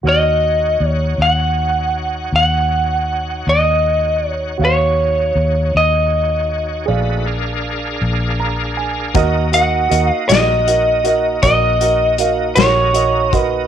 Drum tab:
HH |------------|------------|xxxxxxxxxxxx|
SD |------------|------------|---o-----o--|
BD |------------|------------|o-----o----o|